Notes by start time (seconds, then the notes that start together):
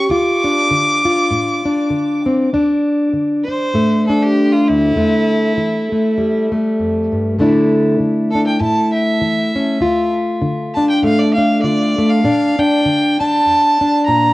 0.09 D2 F4 D6
0.44 D4
0.71 D3
1.05 F4
1.31 A2
1.65 D4
1.90 D3
2.26 C4
2.53 D2 D4
3.13 D3
3.45 D4 C5
3.74 A2 A3
4.07 D4 A4
4.23 G4
4.52 F4
4.67 D2 E4
4.96 E2 A3
5.57 E3
5.92 A3
6.17 E2 G3
6.52 A3
6.79 F2
7.12 G2
7.39 A2 D3 A3 D4 E4
8.00 D3
8.31 A4
8.35 D4
8.47 G5
8.61 A2 E4 A5
8.93 E5
9.21 E3
9.56 C#4
9.81 D2 F4
10.42 D3
10.74 D4 A5
10.90 G5
11.03 A2 A3 F5
11.19 D5
11.34 F5
11.38 D4
11.62 D3 F4 D5
11.98 A3
12.10 F5
12.24 A#2 D4
12.59 D4 G5
12.85 D3
13.19 D4 A5
13.46 F2
13.81 D4
14.06 A#2 A#5